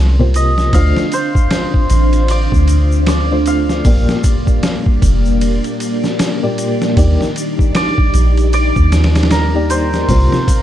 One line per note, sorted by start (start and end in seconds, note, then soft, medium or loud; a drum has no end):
0.00 0.71 C2 loud
0.19 0.70 C3 medium
0.19 0.70 A#3 medium
0.19 0.70 F4 medium
0.19 0.71 C5 medium
0.34 2.37 D#5 medium
0.34 ride medium
0.34 shaker medium
0.58 snare soft
0.58 shaker soft
0.73 0.94 D2 loud
0.73 1.05 D3 medium
0.73 1.05 A3 medium
0.73 3.82 D4 medium
0.73 1.05 F4 medium
0.73 3.82 C5 medium
0.73 1.05 C5 medium
0.73 3.82 F5 medium
0.73 2.96 F5 loud
0.73 kick loud
0.73 ride medium
0.73 shaker medium
0.97 snare medium
0.97 shaker soft
1.12 3.77 C5 medium
1.12 ride medium
1.12 shaker medium
1.35 kick loud
1.35 shaker soft
1.51 snare loud
1.51 ride medium
1.51 shaker soft
1.74 kick medium
1.90 2.48 A1 medium
1.90 ride medium
1.90 shaker medium
2.13 ride soft
2.13 shaker soft
2.28 3.08 D5 medium
2.28 ride medium
2.28 shaker medium
2.52 3.82 D2 medium
2.52 kick medium
2.52 shaker soft
2.68 ride medium
2.68 shaker medium
2.92 shaker soft
3.07 5.54 D5 medium
3.07 snare loud
3.07 ride medium
3.07 shaker medium
3.31 3.82 D3 medium
3.31 3.82 A3 medium
3.31 3.82 F4 medium
3.31 3.82 C5 medium
3.46 5.69 F5 medium
3.46 ride medium
3.46 shaker medium
3.69 snare soft
3.69 shaker soft
3.85 4.06 A#1 loud
3.85 4.16 A#2 medium
3.85 6.94 A#3 medium
3.85 4.17 A#3 medium
3.85 4.17 G4 medium
3.85 10.05 G4 medium
3.85 10.05 D5 medium
3.85 4.17 D5 medium
3.85 kick loud
3.85 open hi-hat medium
3.85 shaker medium
4.09 snare medium
4.09 shaker soft
4.24 kick loud
4.24 ride medium
4.24 shaker medium
4.47 kick medium
4.47 shaker soft
4.63 snare loud
4.63 ride medium
4.63 shaker soft
4.86 kick medium
5.02 5.60 F1 medium
5.02 kick medium
5.02 ride medium
5.02 shaker medium
5.25 shaker soft
5.41 ride medium
5.41 shaker medium
5.64 ride soft
5.64 shaker soft
5.80 ride medium
5.80 shaker medium
6.04 snare soft
6.04 shaker soft
6.19 snare loud
6.19 ride medium
6.19 shaker medium
6.43 6.93 A#2 medium
6.43 6.93 A#3 medium
6.43 6.94 G4 medium
6.43 6.94 D5 medium
6.58 ride medium
6.58 shaker medium
6.82 snare medium
6.82 shaker soft
6.97 7.17 D#2 loud
6.97 7.28 D#3 medium
6.97 7.28 A#3 medium
6.97 10.06 D#4 medium
6.97 7.28 G4 medium
6.97 7.29 D5 medium
6.97 kick loud
6.97 ride medium
6.97 shaker medium
7.21 snare soft
7.21 shaker soft
7.36 ride medium
7.36 shaker loud
7.59 kick medium
7.59 shaker soft
7.75 8.53 D5 loud
7.75 snare loud
7.75 ride medium
7.75 shaker soft
7.98 kick loud
8.14 8.72 A#1 medium
8.14 ride medium
8.14 shaker loud
8.37 ride soft
8.37 shaker soft
8.53 10.62 D5 loud
8.53 ride medium
8.53 shaker medium
8.76 10.06 D#2 medium
8.76 kick loud
8.76 shaker soft
8.92 snare medium
8.92 ride medium
8.92 shaker medium
9.04 snare medium
9.04 ride medium
9.15 snare medium
9.15 ride medium
9.15 shaker soft
9.23 snare medium
9.23 ride medium
9.31 10.62 A#4 medium
9.31 snare loud
9.31 ride medium
9.31 shaker medium
9.55 10.05 D#3 medium
9.55 10.05 A#3 medium
9.55 10.05 G4 medium
9.55 10.06 D5 medium
9.70 10.62 C5 medium
9.70 ride medium
9.70 shaker medium
9.93 snare soft
9.93 shaker soft
10.09 10.29 C2 loud
10.09 10.40 C3 medium
10.09 10.40 A#3 medium
10.09 10.62 C4 medium
10.09 10.40 F4 medium
10.09 10.62 A#4 medium
10.09 10.41 C5 medium
10.09 10.62 F5 medium
10.09 kick loud
10.09 open hi-hat medium
10.09 shaker medium
10.32 snare medium
10.32 shaker soft
10.48 kick medium
10.48 ride medium
10.48 shaker medium